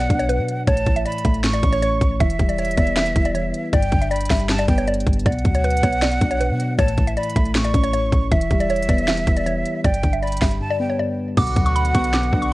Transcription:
Already playing: B2 F#3 B3 D5 F#5
0.00 closed hi-hat
0.10 B1 D4, kick, closed hi-hat
0.19 C#5, closed hi-hat
0.29 B2 B4, closed hi-hat
0.39 B2
0.48 closed hi-hat
0.67 A1 A2 C#5 A5, kick, closed hi-hat
0.77 closed hi-hat
0.86 A1 E3, kick, closed hi-hat
0.96 E5, closed hi-hat
1.05 D5 B5, closed hi-hat
1.12 closed hi-hat
1.18 closed hi-hat
1.24 A1 A3 E5, kick, closed hi-hat
1.34 closed hi-hat
1.43 A2 C#6, finger snap, snare, closed hi-hat
1.53 D5, closed hi-hat
1.62 A1 C#4, kick, closed hi-hat
1.72 C#5, closed hi-hat
1.81 A2 C#5, closed hi-hat
2.01 A1, kick, closed hi-hat
2.20 E1 E3 E5, kick, closed hi-hat
2.30 closed hi-hat
2.39 E1 G3, kick, closed hi-hat
2.49 D5, closed hi-hat
2.58 C#5, closed hi-hat
2.65 closed hi-hat
2.71 closed hi-hat
2.77 E1 B3 D5, kick, closed hi-hat
2.87 closed hi-hat
2.96 E3 E5, finger snap, snare, closed hi-hat
3.06 closed hi-hat
3.16 E1 E4, kick, closed hi-hat
3.25 D5, closed hi-hat
3.34 E3 C#5, closed hi-hat
3.54 closed hi-hat
3.73 G1 G2 D5 G5, kick, closed hi-hat
3.83 closed hi-hat
3.92 G1 D3, kick, closed hi-hat
4.02 E5, closed hi-hat
4.11 D5 B5, closed hi-hat
4.16 closed hi-hat
4.21 closed hi-hat
4.25 closed hi-hat
4.30 G1 G3 E5, finger snap, kick, snare, open hi-hat
4.40 closed hi-hat
4.49 G2 A5, finger snap, snare, closed hi-hat
4.59 D5, closed hi-hat
4.68 G1 B3 G5, kick, closed hi-hat
4.78 C#5, closed hi-hat
4.87 G2 D5, closed hi-hat
4.94 closed hi-hat
5.00 closed hi-hat
5.07 G1, kick, closed hi-hat
5.13 closed hi-hat
5.19 closed hi-hat
5.25 B1 B2 D5 F#5, kick, closed hi-hat
5.32 closed hi-hat
5.39 closed hi-hat
5.44 D2 F#3, kick, closed hi-hat
5.55 C#5, closed hi-hat
5.64 B4, closed hi-hat
5.70 closed hi-hat
5.77 closed hi-hat
5.83 B1 B3 C#5, kick, closed hi-hat
5.92 closed hi-hat
6.02 B2 D5, finger snap, snare, closed hi-hat
6.11 closed hi-hat
6.21 B1 D4, kick, closed hi-hat
6.31 C#5, closed hi-hat
6.40 B2 B4, closed hi-hat
6.50 B2
6.60 closed hi-hat
6.78 A1 A2 C#5 A5, kick, closed hi-hat
6.88 closed hi-hat
6.98 A1 E3, kick, closed hi-hat
7.07 E5, closed hi-hat
7.17 D5 B5, closed hi-hat
7.23 closed hi-hat
7.30 closed hi-hat
7.36 A1 A3 E5, kick, closed hi-hat
7.45 closed hi-hat
7.55 A2 C#6, finger snap, snare, closed hi-hat
7.64 D5, closed hi-hat
7.74 A1 C#4, kick, closed hi-hat
7.84 C#5, closed hi-hat
7.93 A2 C#5, closed hi-hat
8.12 A1, kick, closed hi-hat
8.31 E1 E3 E5, kick, closed hi-hat
8.41 closed hi-hat
8.51 E1 G3, kick, closed hi-hat
8.60 D5, closed hi-hat
8.70 C#5, closed hi-hat
8.76 closed hi-hat
8.83 closed hi-hat
8.89 E1 B3 D5, kick, closed hi-hat
8.98 closed hi-hat
9.08 E3 E5, finger snap, snare, closed hi-hat
9.17 closed hi-hat
9.27 E1 E4, kick, closed hi-hat
9.37 D5, closed hi-hat
9.46 E3 C#5, closed hi-hat
9.66 closed hi-hat
9.84 G1 G2 D5 G5, kick, closed hi-hat
9.94 closed hi-hat
10.03 G1 D3, kick, closed hi-hat
10.13 E5, closed hi-hat
10.22 D5 B5, closed hi-hat
10.27 closed hi-hat
10.32 closed hi-hat
10.37 closed hi-hat
10.41 G1 G3 E5, finger snap, kick, snare, open hi-hat
10.51 closed hi-hat
10.61 G2 A5
10.71 D5
10.80 B3 G5
10.90 C#5
10.99 G2 D5
11.37 B1 B2 D3 B3 F#4 F#5 D6, kick, closed hi-hat, crash
11.47 closed hi-hat
11.56 D2 F#3, kick, closed hi-hat
11.66 C#6, closed hi-hat
11.76 B5, closed hi-hat
11.85 closed hi-hat
11.95 B1 B3 C#6, kick, closed hi-hat
12.04 closed hi-hat
12.13 B2 D6, finger snap, snare, closed hi-hat
12.23 closed hi-hat
12.33 B1 D4, kick
12.42 C#6, closed hi-hat

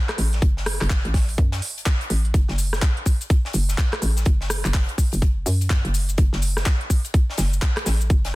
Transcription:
0.09 cross-stick, clap, closed hi-hat
0.18 A1, closed hi-hat, open hi-hat
0.33 snare, closed hi-hat
0.42 F#1, kick, closed hi-hat
0.57 snare
0.66 cross-stick, closed hi-hat, open hi-hat
0.81 F#1, cross-stick, clap, closed hi-hat
0.90 kick, snare, clap
1.05 A1, closed hi-hat
1.14 kick, snare, closed hi-hat, open hi-hat
1.29 closed hi-hat, open hi-hat
1.38 F#2, kick, closed hi-hat
1.52 snare, closed hi-hat
1.62 closed hi-hat, open hi-hat
1.78 closed hi-hat
1.86 kick, snare, clap, closed hi-hat
2.01 closed hi-hat
2.10 A1, closed hi-hat, open hi-hat
2.25 closed hi-hat
2.34 F#1, kick, closed hi-hat, cabasa
2.48 F#1, snare
2.58 closed hi-hat, open hi-hat, cabasa
2.73 cross-stick, snare, cabasa
2.82 kick, snare, clap, closed hi-hat, cabasa
2.97 closed hi-hat
3.06 kick, closed hi-hat, open hi-hat, cabasa
3.21 closed hi-hat, cabasa
3.30 kick, closed hi-hat, cabasa
3.45 snare
3.53 F#1, closed hi-hat, open hi-hat, cabasa
3.69 snare, cabasa
3.78 kick, snare, clap, closed hi-hat, cabasa
3.93 cross-stick, clap, closed hi-hat
4.02 A1, closed hi-hat, open hi-hat, cabasa
4.17 snare, closed hi-hat, cabasa
4.25 F#1, kick, closed hi-hat, cabasa
4.41 snare
4.50 cross-stick, closed hi-hat, open hi-hat, cabasa
4.65 F#1, clap, closed hi-hat, cabasa
4.74 kick, snare, clap, closed hi-hat, open hi-hat, cabasa
4.89 closed hi-hat
4.98 kick, closed hi-hat, open hi-hat, cabasa
5.12 F#1, closed hi-hat, open hi-hat, cabasa
5.22 kick, closed hi-hat, cabasa
5.46 F#2, closed hi-hat, open hi-hat, cabasa
5.61 closed hi-hat, cabasa
5.70 kick, snare, clap, closed hi-hat, cabasa
5.85 F#1, closed hi-hat
5.94 closed hi-hat, open hi-hat, cabasa
6.09 closed hi-hat, cabasa
6.18 F#1, kick, closed hi-hat, cabasa
6.33 F#1, snare
6.42 closed hi-hat, open hi-hat, cabasa
6.57 cross-stick, snare, cabasa
6.66 kick, snare, clap, closed hi-hat, cabasa
6.81 closed hi-hat
6.90 kick, closed hi-hat, open hi-hat, cabasa
7.04 closed hi-hat, cabasa
7.14 kick, closed hi-hat, cabasa
7.30 snare
7.38 F#1, snare, closed hi-hat, open hi-hat, cabasa
7.53 cabasa
7.62 kick, clap, closed hi-hat, cabasa
7.77 cross-stick, clap, closed hi-hat
7.86 A1, snare, closed hi-hat, open hi-hat, cabasa
8.01 closed hi-hat, cabasa
8.10 F#1, kick, closed hi-hat, cabasa
8.25 snare, closed hi-hat

